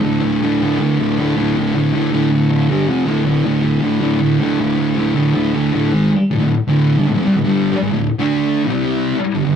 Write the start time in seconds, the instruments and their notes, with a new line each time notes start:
0.01 distorted electric guitar D2 A2 D3
0.20 distorted electric guitar D2 A2 D3
0.41 distorted electric guitar D2 A2 D3
0.61 distorted electric guitar D2 A2 D3
0.79 distorted electric guitar D2 A2 D3
0.98 distorted electric guitar D2 A2 D3
1.18 distorted electric guitar D2 A2 D3
1.36 distorted electric guitar D2 A2 D3
1.56 distorted electric guitar D2 A2 D3
1.74 distorted electric guitar D2 A2 D3
1.93 distorted electric guitar D2 A2 D3
2.11 distorted electric guitar D2 A2 D3
2.31 distorted electric guitar D2 A2 D3
2.50 distorted electric guitar D2 A2 D3
2.69 distorted electric guitar G2 D3 G3
2.87 distorted electric guitar F2 C3 F3
3.06 distorted electric guitar D2 A2 D3
3.25 distorted electric guitar D2 A2 D3
3.44 distorted electric guitar D2 A2 D3
3.62 distorted electric guitar D2 A2 D3
3.81 distorted electric guitar D2 A2 D3
4.01 distorted electric guitar D2 A2 D3
4.21 distorted electric guitar D2 A2 D3
4.40 distorted electric guitar D2 A2 D3
4.59 distorted electric guitar D2 A2 D3
4.77 distorted electric guitar D2 A2 D3
4.96 distorted electric guitar D2 A2 D3
5.15 distorted electric guitar D2 A2 D3
5.33 distorted electric guitar D2 A2 D3
5.54 distorted electric guitar D2 A2 D3
5.72 distorted electric guitar D2 A2 D3
5.91 distorted electric guitar G#2 D#3 G#3
6.31 distorted electric guitar D2 A2
6.40 distorted electric guitar D2 A2
6.68 distorted electric guitar D2 A2 D3
6.97 distorted electric guitar G2 D3
7.07 distorted electric guitar D2 A2
7.16 distorted electric guitar F2 C3
7.25 distorted electric guitar C3 G3
7.36 distorted electric guitar D2 A2
7.45 distorted electric guitar G2 D3 G3
7.73 muted distorted electric guitar stroke
7.82 distorted electric guitar G#2 D#3
7.91 distorted electric guitar D2 A2
8.19 distorted electric guitar D3 A3 D4
8.67 distorted electric guitar C3 G3 C4
9.34 distorted electric guitar G2 D3
9.44 distorted electric guitar G2 D3